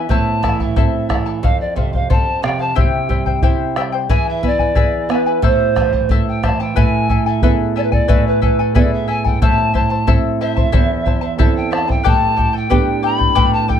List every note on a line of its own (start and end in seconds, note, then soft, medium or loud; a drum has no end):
0.00 0.10 B4 soft
0.00 0.13 E5 medium
0.00 0.10 G#5 soft
0.09 1.39 A2 medium
0.09 0.42 E4 medium
0.09 0.43 A4 medium
0.09 0.44 C5 medium
0.09 0.42 E5 medium
0.09 0.43 A5 medium
0.09 0.60 A5 loud
0.09 bombo low medium
0.43 0.76 E3 soft
0.43 0.60 E4 soft
0.43 0.60 A4 medium
0.43 0.60 E5 medium
0.43 0.59 A5 medium
0.43 bombo rim soft
0.43 bombo low soft
0.60 0.76 E4 soft
0.60 0.76 A4 soft
0.60 1.07 E5 medium
0.60 0.76 A5 soft
0.60 bombo low soft
0.76 1.09 C4 soft
0.76 1.08 E4 medium
0.76 1.09 A4 medium
0.76 1.10 C5 medium
0.76 1.08 E5 medium
0.76 1.09 A5 medium
0.76 bombo low medium
1.09 1.42 E3 soft
1.09 1.26 E4 soft
1.09 1.25 A4 medium
1.09 1.27 E5 medium
1.09 1.25 A5 medium
1.09 bombo rim medium
1.09 bombo low soft
1.26 1.44 E4 soft
1.26 1.42 A4 soft
1.26 1.43 A5 soft
1.43 2.73 F2 medium
1.43 1.74 A4 medium
1.43 1.76 C5 medium
1.43 1.59 F5 medium
1.43 1.76 F5 medium
1.43 bombo low medium
1.60 1.76 D5 medium
1.76 2.09 C3 soft
1.76 1.93 A4 medium
1.76 1.93 C5 medium
1.76 1.93 E5 medium
1.76 1.92 F5 medium
1.76 bombo low soft
1.93 2.09 C5 soft
1.93 2.09 F5 soft
1.93 2.10 F5 medium
1.93 bombo low soft
2.10 2.43 F3 soft
2.10 2.41 A4 medium
2.10 2.42 C5 medium
2.10 2.43 F5 medium
2.10 2.44 A5 medium
2.10 bombo low medium
2.42 2.75 C3 soft
2.42 2.60 A4 medium
2.42 2.59 C5 medium
2.42 2.58 F5 medium
2.42 2.62 G5 medium
2.42 bombo rim medium
2.59 2.75 C5 soft
2.59 2.75 F5 soft
2.59 2.77 A5 medium
2.75 4.06 C3 medium
2.75 3.08 E4 medium
2.75 3.10 G4 medium
2.75 3.09 C5 medium
2.75 3.08 E5 medium
2.75 3.09 G5 medium
2.75 3.40 G5 medium
2.75 bombo low medium
3.09 3.42 G3 soft
3.09 3.26 E4 medium
3.09 3.26 C5 medium
3.09 3.27 E5 soft
3.09 3.25 G5 medium
3.09 bombo low soft
3.26 3.42 E4 soft
3.26 3.42 C5 soft
3.26 3.42 G5 soft
3.26 bombo low soft
3.42 3.76 E4 soft
3.42 3.75 E4 medium
3.42 3.77 G4 medium
3.42 3.76 C5 medium
3.42 3.75 E5 medium
3.42 3.76 G5 medium
3.42 bombo low medium
3.76 4.09 G3 soft
3.76 3.93 E4 medium
3.76 3.93 C5 medium
3.76 3.93 E5 medium
3.76 3.91 G5 medium
3.76 bombo rim medium
3.92 4.09 E4 soft
3.92 4.09 C5 soft
3.92 4.10 G5 soft
4.09 5.39 E3 medium
4.09 4.42 E4 medium
4.09 4.43 G#4 medium
4.09 4.42 B4 medium
4.09 4.42 E5 medium
4.09 4.43 G#5 medium
4.09 4.26 G#5 medium
4.09 bombo low medium
4.28 4.48 E5 medium
4.43 4.76 B3 medium
4.43 4.59 E4 medium
4.43 4.59 B4 medium
4.43 5.12 D5 medium
4.43 4.60 E5 medium
4.43 4.58 G#5 medium
4.43 bombo low soft
4.59 4.75 E4 soft
4.59 4.75 B4 soft
4.59 4.75 G#5 soft
4.59 bombo low soft
4.75 5.09 E4 medium
4.75 5.09 G#4 medium
4.75 5.09 G#4 soft
4.75 5.09 B4 medium
4.75 5.09 E5 medium
4.75 5.10 G#5 medium
4.75 bombo low medium
5.09 5.42 B3 soft
5.09 5.27 E4 medium
5.09 5.26 B4 medium
5.09 5.47 B4 medium
5.09 5.27 E5 medium
5.09 5.25 G#5 medium
5.09 bombo rim soft
5.26 5.42 E4 soft
5.26 5.42 B4 soft
5.26 5.43 G#5 soft
5.42 6.72 A2 medium
5.42 5.75 E4 medium
5.42 5.76 A4 medium
5.42 5.76 C5 medium
5.42 6.11 C5 medium
5.42 5.74 E5 medium
5.42 5.76 A5 medium
5.42 bombo low medium
5.76 6.09 E3 soft
5.76 5.93 E4 soft
5.76 5.92 C5 medium
5.76 5.93 E5 medium
5.76 5.92 A5 medium
5.76 bombo rim soft
5.76 bombo low soft
5.93 6.10 E4 soft
5.93 6.10 C5 soft
5.93 6.10 A5 soft
5.93 bombo low soft
6.09 6.42 A3 soft
6.09 6.42 E4 medium
6.09 6.43 A4 medium
6.09 6.42 C5 medium
6.09 6.42 E5 medium
6.09 6.26 E5 medium
6.09 6.43 A5 medium
6.09 bombo low medium
6.28 6.43 G5 medium
6.43 6.75 E3 soft
6.43 6.60 E4 medium
6.43 6.59 C5 medium
6.43 6.60 E5 medium
6.43 6.59 A5 medium
6.43 6.62 A5 medium
6.43 bombo rim medium
6.43 bombo low soft
6.60 6.75 E4 soft
6.60 6.76 C5 soft
6.60 6.77 G5 medium
6.60 6.76 A5 medium
6.76 8.05 A2 medium
6.76 7.09 E4 medium
6.76 7.09 A4 medium
6.76 7.09 B4 medium
6.76 7.08 E5 medium
6.76 7.10 G#5 medium
6.76 7.23 G#5 medium
6.76 bombo low medium
7.09 7.26 E4 medium
7.09 7.26 A4 medium
7.09 7.26 E5 medium
7.09 7.25 G#5 medium
7.09 bombo low soft
7.26 7.42 E4 soft
7.26 7.42 A4 soft
7.26 7.54 E5 medium
7.26 7.43 G#5 soft
7.42 8.07 B3 soft
7.42 7.75 E4 medium
7.42 8.07 E4 soft
7.42 8.08 G#4 soft
7.42 7.76 A4 medium
7.42 7.76 B4 medium
7.42 7.75 E5 medium
7.42 7.76 G#5 medium
7.42 bombo low medium
7.76 7.92 E4 medium
7.76 7.92 A4 medium
7.76 7.84 D5 medium
7.76 7.92 E5 medium
7.76 7.91 G#5 medium
7.83 7.93 B4 medium
7.92 8.07 E4 soft
7.92 8.07 A4 soft
7.92 8.28 D5 medium
7.92 8.08 G#5 medium
7.92 bombo low medium
8.08 9.38 A2 medium
8.08 8.41 E4 medium
8.08 8.41 A4 medium
8.08 8.42 B4 medium
8.08 8.40 E5 medium
8.08 8.42 G#5 medium
8.08 bombo low medium
8.27 8.42 B4 medium
8.42 8.59 E4 medium
8.42 8.59 A4 medium
8.42 8.73 B4 medium
8.42 8.58 E5 medium
8.42 8.58 G#5 medium
8.42 bombo low medium
8.59 8.74 E4 soft
8.59 8.75 A4 soft
8.59 8.75 G#5 soft
8.75 9.39 B3 soft
8.75 9.39 E4 soft
8.75 9.06 E4 medium
8.75 9.40 G#4 soft
8.75 9.07 A4 medium
8.75 9.08 B4 medium
8.75 8.94 D5 medium
8.75 9.06 E5 medium
8.75 9.08 G#5 medium
8.75 bombo low medium
8.93 9.10 E5 medium
9.08 9.25 E4 medium
9.08 9.24 A4 medium
9.08 9.25 E5 medium
9.08 9.23 G#5 medium
9.08 9.25 G#5 medium
9.24 9.41 E4 soft
9.24 9.40 A4 soft
9.24 9.41 G5 medium
9.24 9.41 G#5 medium
9.24 bombo low medium
9.42 10.70 A2 medium
9.42 9.73 E4 medium
9.42 9.74 A4 medium
9.42 9.74 C5 medium
9.42 9.72 E5 medium
9.42 9.72 A5 loud
9.42 9.74 A5 medium
9.42 bombo low medium
9.74 9.90 E4 medium
9.74 9.90 C5 medium
9.74 9.91 E5 medium
9.74 9.89 A5 medium
9.74 10.11 A5 medium
9.74 bombo low medium
9.90 10.06 E4 soft
9.90 10.07 C5 soft
9.90 10.07 A5 soft
10.07 10.71 C4 soft
10.07 10.71 E4 soft
10.07 10.40 E4 medium
10.07 10.40 A4 medium
10.07 10.72 A4 soft
10.07 10.40 C5 medium
10.07 10.40 E5 medium
10.07 10.40 A5 medium
10.07 bombo low medium
10.41 10.56 E4 medium
10.41 10.56 C5 medium
10.41 10.57 E5 medium
10.41 11.36 E5 loud
10.41 10.55 A5 medium
10.57 10.71 E4 soft
10.57 10.72 C5 soft
10.57 10.72 A5 medium
10.57 bombo low medium
10.72 12.01 E2 medium
10.72 11.05 E4 medium
10.72 11.06 A4 medium
10.72 11.05 C5 medium
10.72 11.04 E5 medium
10.72 11.06 A5 medium
10.72 bombo low medium
11.06 11.21 E4 medium
11.06 11.21 C5 medium
11.06 11.22 E5 medium
11.06 11.20 A5 medium
11.06 bombo low medium
11.21 11.38 E4 soft
11.21 11.38 C5 soft
11.21 11.38 A5 soft
11.38 12.03 C4 soft
11.38 12.03 E4 soft
11.38 11.70 E4 medium
11.38 11.72 A4 medium
11.38 12.04 A4 soft
11.38 11.71 C5 medium
11.38 11.70 E5 medium
11.38 11.55 E5 medium
11.38 11.71 A5 medium
11.38 bombo low medium
11.56 11.71 G5 medium
11.71 11.88 E4 medium
11.71 11.87 C5 medium
11.71 11.88 E5 medium
11.71 11.86 A5 medium
11.71 11.91 A5 medium
11.71 bombo rim soft
11.88 12.04 E4 soft
11.88 12.04 C5 soft
11.88 12.06 G5 medium
11.88 12.05 A5 medium
11.88 bombo low medium
12.04 13.33 A2 medium
12.04 12.36 G4 medium
12.04 12.36 A4 medium
12.04 12.37 B4 medium
12.04 12.35 D5 medium
12.04 12.37 G5 medium
12.04 12.58 A5 loud
12.04 bombo low medium
12.36 12.53 G4 medium
12.36 12.53 A4 medium
12.36 12.54 D5 medium
12.36 12.52 G5 medium
12.36 bombo low medium
12.53 12.69 G4 soft
12.53 12.70 A4 soft
12.53 12.70 G5 soft
12.53 13.04 G5 medium
12.70 13.34 B3 soft
12.70 13.35 D4 soft
12.70 13.02 G4 medium
12.70 13.35 G4 soft
12.70 13.03 A4 medium
12.70 13.03 B4 medium
12.70 13.01 D5 medium
12.70 13.03 G5 medium
12.70 bombo low medium
13.03 13.18 G4 medium
13.03 13.18 A4 medium
13.03 13.20 D5 medium
13.03 13.17 G5 medium
13.03 13.55 B5 loud
13.18 13.34 G4 soft
13.18 13.34 A4 soft
13.18 13.35 G5 soft
13.18 bombo low soft
13.35 13.80 A2 medium
13.35 13.67 G4 medium
13.35 13.68 A4 medium
13.35 13.69 B4 medium
13.35 13.67 D5 medium
13.35 13.68 G5 medium
13.35 bombo low medium
13.53 13.69 A5 medium
13.68 13.80 G4 medium
13.68 13.80 A4 medium
13.68 13.80 D5 medium
13.68 13.80 G5 medium
13.68 bombo low soft